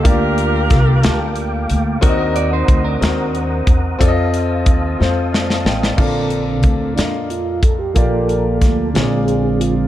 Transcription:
<<
  \new Staff \with { instrumentName = "Tonewheel organ" } { \time 6/8 \key bes \major \tempo 4. = 61 <f'' g'' d'''>2. | <ges'' bes'' ees'''>2. | <f'' a'' ees'''>2. | r4. d'8 f'8 a'16 g'16 |
bes'4 r4 aes'16 aes'16 f'8 | }
  \new Staff \with { instrumentName = "Tonewheel organ" } { \time 6/8 \key bes \major bes2. | c''2.~ | c''2. | <d c' a'>4. r4. |
<f bes a'>4. <d aes c'>4. | }
  \new Staff \with { instrumentName = "Grand piano" } { \time 6/8 \key bes \major << { r2. | r2. | r2 <d'' f''>16 <f'' a''>16 <ees'' g''>16 <d'' f''>16~ | <d'' f''>16 r2 r8. |
r2. | } \\ { <bes f' g' d''>4 r8 <bes f' g' a''>4 r8 | <c' ges' bes' d'' ees''>4 r8 <c' ges' bes' c''>4 r8 | <c' f' a' d'' ees''>4 r8 <c' f' a' c''>4 r8 | <bes f' a' d''>4 r8 <bes f' a' ees'' f''>4 r8 |
<bes f' g' d''>4 r8 <bes f' aes' des'' d''>4 r8 | } >> }
  \new Staff \with { instrumentName = "Grand piano" } { \clef bass \time 6/8 \key bes \major d4. r4. | ees'4. r4. | r2. | bes,4. r4. |
bes,4. bes,4. | }
  \new Staff \with { instrumentName = "Saxophone section" } { \time 6/8 \key bes \major <f' g' bes'>2 r4 | r2. | r2. | r2. |
r2. | }
  \new Staff \with { instrumentName = "Clean electric guitar" } { \time 6/8 \key bes \major r2. | <bes ges'>16 <d' bes'>16 <ges' d''>16 <ees' c''>8 <d' bes'>4. r16 | r2. | r2. |
r2. | }
  \new Staff \with { instrumentName = "Upright bass" } { \clef bass \time 6/8 \key bes \major d,4 c,8 d,4 d,8 | ees,4 d,8 ees,4 e,8 | f,4 ees,8 f,4 a,,8 | bes,,4 d,8 f,4. |
bes,,4 d,8 bes,,4. | }
  \new DrumStaff \with { instrumentName = "Drums" } \drummode { \time 6/8 <hh bd>8 hh8 <hh bd sn>8 <hh sn>8 hh8 hh8 | <hh bd>8 hh8 <hh bd>8 <hh sn>8 hh8 <hh bd>8 | <hh bd>8 hh8 <hh bd>8 sn8 sn16 sn16 sn16 sn16 | <cymc bd>8 hh8 <hh bd>8 <hh sn>8 hh8 <hh bd>8 |
<hh bd>8 hh8 <hh bd sn>8 <hh sn>8 hh8 hh8 | }
>>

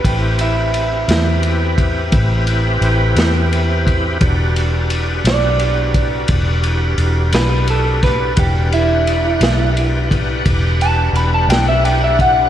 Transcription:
<<
  \new Staff \with { instrumentName = "Clean electric guitar" } { \time 12/8 \key e \minor \tempo 4. = 58 g'8 e'2 r2. r8 | r4. d''2. b'8 a'8 b'8 | g'8 e'2 r4 a''8 b''16 a''16 g''16 e''16 g''16 e''16 fis''8 | }
  \new Staff \with { instrumentName = "Tonewheel organ" } { \time 12/8 \key e \minor <c' e' g' b'>1. | <d' fis' g' b'>1. | <d' g' b' fis''>1. | }
  \new Staff \with { instrumentName = "Fingered electric bass" } { \clef bass \time 12/8 \key e \minor a,,4. e,4. a,,4 a,,8 e,4. | e,,4. b,,4. e,,4 e,,8 b,,4. | e,,4. b,,4. e,,4 e,,8 b,,4. | }
  \new DrumStaff \with { instrumentName = "Drums" } \drummode { \time 12/8 <bd cymr>8 cymr8 cymr8 <cymr sn>8 cymr8 <bd cymr>8 <bd cymr>8 cymr8 cymr8 <cymr sn>8 cymr8 <bd cymr>8 | <bd cymr>8 cymr8 cymr8 <cymr sn>8 cymr8 <bd cymr>8 <bd cymr>8 cymr8 cymr8 <cymr sn>8 cymr8 <bd cymr sn>8 | <bd cymr>8 cymr8 cymr8 <cymr sn>8 cymr8 <bd cymr>8 <bd cymr>8 cymr8 cymr8 <cymr sn>8 cymr8 <bd cymr>8 | }
>>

